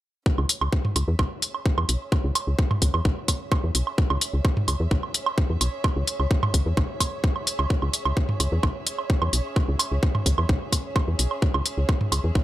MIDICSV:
0, 0, Header, 1, 5, 480
1, 0, Start_track
1, 0, Key_signature, 4, "minor"
1, 0, Tempo, 465116
1, 268, Time_signature, 4, 2, 24, 8
1, 12836, End_track
2, 0, Start_track
2, 0, Title_t, "Synth texture"
2, 0, Program_c, 0, 99
2, 265, Note_on_c, 0, 73, 80
2, 12836, Note_off_c, 0, 73, 0
2, 12836, End_track
3, 0, Start_track
3, 0, Title_t, "String section"
3, 0, Program_c, 1, 48
3, 269, Note_on_c, 1, 61, 67
3, 507, Note_on_c, 1, 68, 68
3, 667, Note_on_c, 1, 76, 69
3, 12836, Note_off_c, 1, 61, 0
3, 12836, Note_off_c, 1, 68, 0
3, 12836, Note_off_c, 1, 76, 0
3, 12836, End_track
4, 0, Start_track
4, 0, Title_t, "FM bass"
4, 0, Program_c, 2, 39
4, 394, Note_on_c, 2, 37, 100
4, 467, Note_off_c, 2, 37, 0
4, 634, Note_on_c, 2, 37, 74
4, 707, Note_off_c, 2, 37, 0
4, 989, Note_on_c, 2, 37, 91
4, 1069, Note_off_c, 2, 37, 0
4, 1113, Note_on_c, 2, 40, 101
4, 1187, Note_off_c, 2, 40, 0
4, 1228, Note_on_c, 2, 35, 85
4, 1308, Note_off_c, 2, 35, 0
4, 1833, Note_on_c, 2, 40, 89
4, 1907, Note_off_c, 2, 40, 0
4, 1949, Note_on_c, 2, 35, 77
4, 2029, Note_off_c, 2, 35, 0
4, 2314, Note_on_c, 2, 37, 97
4, 2387, Note_off_c, 2, 37, 0
4, 2553, Note_on_c, 2, 37, 76
4, 2627, Note_off_c, 2, 37, 0
4, 2909, Note_on_c, 2, 37, 87
4, 2989, Note_off_c, 2, 37, 0
4, 3034, Note_on_c, 2, 40, 98
4, 3107, Note_off_c, 2, 40, 0
4, 3149, Note_on_c, 2, 35, 82
4, 3229, Note_off_c, 2, 35, 0
4, 3754, Note_on_c, 2, 40, 88
4, 3827, Note_off_c, 2, 40, 0
4, 3869, Note_on_c, 2, 35, 76
4, 3949, Note_off_c, 2, 35, 0
4, 4234, Note_on_c, 2, 37, 98
4, 4307, Note_off_c, 2, 37, 0
4, 4474, Note_on_c, 2, 37, 77
4, 4548, Note_off_c, 2, 37, 0
4, 4829, Note_on_c, 2, 37, 95
4, 4909, Note_off_c, 2, 37, 0
4, 4954, Note_on_c, 2, 40, 98
4, 5027, Note_off_c, 2, 40, 0
4, 5069, Note_on_c, 2, 35, 86
4, 5149, Note_off_c, 2, 35, 0
4, 5674, Note_on_c, 2, 40, 90
4, 5747, Note_off_c, 2, 40, 0
4, 5790, Note_on_c, 2, 35, 77
4, 5869, Note_off_c, 2, 35, 0
4, 6154, Note_on_c, 2, 37, 98
4, 6227, Note_off_c, 2, 37, 0
4, 6394, Note_on_c, 2, 37, 75
4, 6468, Note_off_c, 2, 37, 0
4, 6749, Note_on_c, 2, 37, 92
4, 6829, Note_off_c, 2, 37, 0
4, 6874, Note_on_c, 2, 40, 98
4, 6947, Note_off_c, 2, 40, 0
4, 6989, Note_on_c, 2, 35, 82
4, 7069, Note_off_c, 2, 35, 0
4, 7834, Note_on_c, 2, 37, 83
4, 7907, Note_off_c, 2, 37, 0
4, 8074, Note_on_c, 2, 37, 97
4, 8147, Note_off_c, 2, 37, 0
4, 8313, Note_on_c, 2, 37, 78
4, 8387, Note_off_c, 2, 37, 0
4, 8669, Note_on_c, 2, 37, 91
4, 8749, Note_off_c, 2, 37, 0
4, 8794, Note_on_c, 2, 40, 99
4, 8867, Note_off_c, 2, 40, 0
4, 8909, Note_on_c, 2, 35, 79
4, 8989, Note_off_c, 2, 35, 0
4, 9513, Note_on_c, 2, 40, 88
4, 9587, Note_off_c, 2, 40, 0
4, 9629, Note_on_c, 2, 35, 79
4, 9708, Note_off_c, 2, 35, 0
4, 9994, Note_on_c, 2, 37, 100
4, 10068, Note_off_c, 2, 37, 0
4, 10234, Note_on_c, 2, 37, 74
4, 10307, Note_off_c, 2, 37, 0
4, 10588, Note_on_c, 2, 37, 95
4, 10668, Note_off_c, 2, 37, 0
4, 10714, Note_on_c, 2, 40, 97
4, 10787, Note_off_c, 2, 40, 0
4, 10828, Note_on_c, 2, 35, 84
4, 10908, Note_off_c, 2, 35, 0
4, 11433, Note_on_c, 2, 40, 86
4, 11507, Note_off_c, 2, 40, 0
4, 11549, Note_on_c, 2, 35, 75
4, 11629, Note_off_c, 2, 35, 0
4, 11914, Note_on_c, 2, 37, 99
4, 11987, Note_off_c, 2, 37, 0
4, 12153, Note_on_c, 2, 37, 77
4, 12227, Note_off_c, 2, 37, 0
4, 12508, Note_on_c, 2, 37, 92
4, 12588, Note_off_c, 2, 37, 0
4, 12633, Note_on_c, 2, 40, 97
4, 12707, Note_off_c, 2, 40, 0
4, 12749, Note_on_c, 2, 35, 86
4, 12828, Note_off_c, 2, 35, 0
4, 12836, End_track
5, 0, Start_track
5, 0, Title_t, "Drums"
5, 268, Note_on_c, 9, 36, 111
5, 372, Note_off_c, 9, 36, 0
5, 394, Note_on_c, 9, 77, 39
5, 498, Note_off_c, 9, 77, 0
5, 508, Note_on_c, 9, 46, 86
5, 611, Note_off_c, 9, 46, 0
5, 634, Note_on_c, 9, 77, 75
5, 737, Note_off_c, 9, 77, 0
5, 748, Note_on_c, 9, 36, 115
5, 852, Note_off_c, 9, 36, 0
5, 874, Note_on_c, 9, 45, 77
5, 977, Note_off_c, 9, 45, 0
5, 989, Note_on_c, 9, 46, 84
5, 989, Note_on_c, 9, 77, 43
5, 1092, Note_off_c, 9, 46, 0
5, 1093, Note_off_c, 9, 77, 0
5, 1228, Note_on_c, 9, 36, 110
5, 1229, Note_on_c, 9, 77, 74
5, 1331, Note_off_c, 9, 36, 0
5, 1333, Note_off_c, 9, 77, 0
5, 1469, Note_on_c, 9, 46, 86
5, 1572, Note_off_c, 9, 46, 0
5, 1594, Note_on_c, 9, 77, 40
5, 1698, Note_off_c, 9, 77, 0
5, 1708, Note_on_c, 9, 36, 112
5, 1812, Note_off_c, 9, 36, 0
5, 1834, Note_on_c, 9, 77, 75
5, 1937, Note_off_c, 9, 77, 0
5, 1949, Note_on_c, 9, 46, 85
5, 2052, Note_off_c, 9, 46, 0
5, 2188, Note_on_c, 9, 36, 114
5, 2189, Note_on_c, 9, 77, 43
5, 2292, Note_off_c, 9, 36, 0
5, 2292, Note_off_c, 9, 77, 0
5, 2429, Note_on_c, 9, 46, 88
5, 2430, Note_on_c, 9, 77, 72
5, 2532, Note_off_c, 9, 46, 0
5, 2533, Note_off_c, 9, 77, 0
5, 2668, Note_on_c, 9, 36, 115
5, 2772, Note_off_c, 9, 36, 0
5, 2794, Note_on_c, 9, 45, 80
5, 2794, Note_on_c, 9, 77, 44
5, 2897, Note_off_c, 9, 45, 0
5, 2897, Note_off_c, 9, 77, 0
5, 2908, Note_on_c, 9, 46, 87
5, 2909, Note_on_c, 9, 36, 59
5, 3011, Note_off_c, 9, 46, 0
5, 3012, Note_off_c, 9, 36, 0
5, 3033, Note_on_c, 9, 77, 74
5, 3137, Note_off_c, 9, 77, 0
5, 3149, Note_on_c, 9, 36, 111
5, 3252, Note_off_c, 9, 36, 0
5, 3388, Note_on_c, 9, 36, 60
5, 3388, Note_on_c, 9, 46, 88
5, 3389, Note_on_c, 9, 77, 43
5, 3491, Note_off_c, 9, 46, 0
5, 3492, Note_off_c, 9, 36, 0
5, 3492, Note_off_c, 9, 77, 0
5, 3628, Note_on_c, 9, 36, 121
5, 3629, Note_on_c, 9, 77, 74
5, 3732, Note_off_c, 9, 36, 0
5, 3732, Note_off_c, 9, 77, 0
5, 3868, Note_on_c, 9, 46, 89
5, 3971, Note_off_c, 9, 46, 0
5, 3994, Note_on_c, 9, 77, 43
5, 4097, Note_off_c, 9, 77, 0
5, 4108, Note_on_c, 9, 36, 120
5, 4212, Note_off_c, 9, 36, 0
5, 4234, Note_on_c, 9, 77, 75
5, 4337, Note_off_c, 9, 77, 0
5, 4349, Note_on_c, 9, 46, 92
5, 4452, Note_off_c, 9, 46, 0
5, 4589, Note_on_c, 9, 36, 120
5, 4589, Note_on_c, 9, 77, 44
5, 4692, Note_off_c, 9, 36, 0
5, 4692, Note_off_c, 9, 77, 0
5, 4715, Note_on_c, 9, 45, 80
5, 4818, Note_off_c, 9, 45, 0
5, 4829, Note_on_c, 9, 46, 90
5, 4829, Note_on_c, 9, 77, 79
5, 4932, Note_off_c, 9, 46, 0
5, 4932, Note_off_c, 9, 77, 0
5, 5069, Note_on_c, 9, 36, 116
5, 5172, Note_off_c, 9, 36, 0
5, 5193, Note_on_c, 9, 77, 43
5, 5297, Note_off_c, 9, 77, 0
5, 5309, Note_on_c, 9, 46, 94
5, 5412, Note_off_c, 9, 46, 0
5, 5433, Note_on_c, 9, 77, 74
5, 5536, Note_off_c, 9, 77, 0
5, 5549, Note_on_c, 9, 36, 118
5, 5652, Note_off_c, 9, 36, 0
5, 5789, Note_on_c, 9, 46, 86
5, 5789, Note_on_c, 9, 77, 44
5, 5892, Note_off_c, 9, 46, 0
5, 5892, Note_off_c, 9, 77, 0
5, 6029, Note_on_c, 9, 36, 116
5, 6029, Note_on_c, 9, 77, 77
5, 6132, Note_off_c, 9, 36, 0
5, 6132, Note_off_c, 9, 77, 0
5, 6269, Note_on_c, 9, 46, 87
5, 6373, Note_off_c, 9, 46, 0
5, 6395, Note_on_c, 9, 77, 44
5, 6498, Note_off_c, 9, 77, 0
5, 6509, Note_on_c, 9, 36, 116
5, 6612, Note_off_c, 9, 36, 0
5, 6635, Note_on_c, 9, 45, 74
5, 6635, Note_on_c, 9, 77, 75
5, 6738, Note_off_c, 9, 45, 0
5, 6738, Note_off_c, 9, 77, 0
5, 6749, Note_on_c, 9, 36, 60
5, 6749, Note_on_c, 9, 46, 86
5, 6852, Note_off_c, 9, 36, 0
5, 6853, Note_off_c, 9, 46, 0
5, 6989, Note_on_c, 9, 36, 118
5, 6989, Note_on_c, 9, 77, 43
5, 7092, Note_off_c, 9, 36, 0
5, 7092, Note_off_c, 9, 77, 0
5, 7229, Note_on_c, 9, 36, 58
5, 7229, Note_on_c, 9, 46, 93
5, 7229, Note_on_c, 9, 77, 76
5, 7332, Note_off_c, 9, 36, 0
5, 7332, Note_off_c, 9, 46, 0
5, 7332, Note_off_c, 9, 77, 0
5, 7469, Note_on_c, 9, 36, 115
5, 7572, Note_off_c, 9, 36, 0
5, 7593, Note_on_c, 9, 77, 45
5, 7696, Note_off_c, 9, 77, 0
5, 7709, Note_on_c, 9, 46, 85
5, 7812, Note_off_c, 9, 46, 0
5, 7832, Note_on_c, 9, 77, 74
5, 7936, Note_off_c, 9, 77, 0
5, 7949, Note_on_c, 9, 36, 112
5, 8052, Note_off_c, 9, 36, 0
5, 8072, Note_on_c, 9, 77, 41
5, 8176, Note_off_c, 9, 77, 0
5, 8189, Note_on_c, 9, 46, 87
5, 8292, Note_off_c, 9, 46, 0
5, 8312, Note_on_c, 9, 77, 75
5, 8415, Note_off_c, 9, 77, 0
5, 8429, Note_on_c, 9, 36, 111
5, 8532, Note_off_c, 9, 36, 0
5, 8553, Note_on_c, 9, 45, 71
5, 8656, Note_off_c, 9, 45, 0
5, 8668, Note_on_c, 9, 77, 44
5, 8669, Note_on_c, 9, 46, 85
5, 8771, Note_off_c, 9, 77, 0
5, 8772, Note_off_c, 9, 46, 0
5, 8908, Note_on_c, 9, 77, 73
5, 8909, Note_on_c, 9, 36, 113
5, 9011, Note_off_c, 9, 77, 0
5, 9012, Note_off_c, 9, 36, 0
5, 9149, Note_on_c, 9, 46, 89
5, 9252, Note_off_c, 9, 46, 0
5, 9273, Note_on_c, 9, 77, 41
5, 9376, Note_off_c, 9, 77, 0
5, 9389, Note_on_c, 9, 36, 115
5, 9492, Note_off_c, 9, 36, 0
5, 9512, Note_on_c, 9, 77, 77
5, 9615, Note_off_c, 9, 77, 0
5, 9629, Note_on_c, 9, 46, 84
5, 9732, Note_off_c, 9, 46, 0
5, 9867, Note_on_c, 9, 77, 39
5, 9868, Note_on_c, 9, 36, 109
5, 9970, Note_off_c, 9, 77, 0
5, 9971, Note_off_c, 9, 36, 0
5, 10107, Note_on_c, 9, 77, 69
5, 10108, Note_on_c, 9, 46, 88
5, 10210, Note_off_c, 9, 77, 0
5, 10212, Note_off_c, 9, 46, 0
5, 10348, Note_on_c, 9, 36, 111
5, 10451, Note_off_c, 9, 36, 0
5, 10472, Note_on_c, 9, 45, 69
5, 10472, Note_on_c, 9, 77, 42
5, 10575, Note_off_c, 9, 45, 0
5, 10575, Note_off_c, 9, 77, 0
5, 10588, Note_on_c, 9, 36, 55
5, 10588, Note_on_c, 9, 46, 82
5, 10691, Note_off_c, 9, 36, 0
5, 10692, Note_off_c, 9, 46, 0
5, 10712, Note_on_c, 9, 77, 69
5, 10815, Note_off_c, 9, 77, 0
5, 10828, Note_on_c, 9, 36, 110
5, 10931, Note_off_c, 9, 36, 0
5, 11068, Note_on_c, 9, 36, 58
5, 11068, Note_on_c, 9, 46, 84
5, 11068, Note_on_c, 9, 77, 41
5, 11171, Note_off_c, 9, 36, 0
5, 11171, Note_off_c, 9, 77, 0
5, 11172, Note_off_c, 9, 46, 0
5, 11308, Note_on_c, 9, 36, 109
5, 11308, Note_on_c, 9, 77, 73
5, 11411, Note_off_c, 9, 36, 0
5, 11411, Note_off_c, 9, 77, 0
5, 11548, Note_on_c, 9, 46, 80
5, 11652, Note_off_c, 9, 46, 0
5, 11673, Note_on_c, 9, 77, 40
5, 11776, Note_off_c, 9, 77, 0
5, 11788, Note_on_c, 9, 36, 106
5, 11891, Note_off_c, 9, 36, 0
5, 11913, Note_on_c, 9, 77, 72
5, 12016, Note_off_c, 9, 77, 0
5, 12029, Note_on_c, 9, 46, 87
5, 12132, Note_off_c, 9, 46, 0
5, 12268, Note_on_c, 9, 36, 108
5, 12268, Note_on_c, 9, 77, 40
5, 12371, Note_off_c, 9, 36, 0
5, 12371, Note_off_c, 9, 77, 0
5, 12392, Note_on_c, 9, 45, 71
5, 12495, Note_off_c, 9, 45, 0
5, 12508, Note_on_c, 9, 77, 73
5, 12509, Note_on_c, 9, 46, 82
5, 12611, Note_off_c, 9, 77, 0
5, 12612, Note_off_c, 9, 46, 0
5, 12748, Note_on_c, 9, 36, 113
5, 12836, Note_off_c, 9, 36, 0
5, 12836, End_track
0, 0, End_of_file